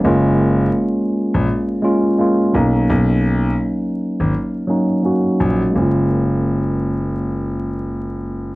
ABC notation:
X:1
M:4/4
L:1/16
Q:"Swing 16ths" 1/4=84
K:F#
V:1 name="Tine electric piano"
[G,A,CE]4- [G,A,CE] z4 z [G,A,CE]2 [G,A,CE]2 [F,A,CD]2- | [F,A,CD]4 z6 [F,A,CD]2 [F,A,CF]2 z2 | [G,A,CE]16 |]
V:2 name="Grand piano" clef=bass
F,,,4 z3 A,,, z6 B,,,2 | B,,,4 z3 G,,, z6 A,,, z | F,,,16 |]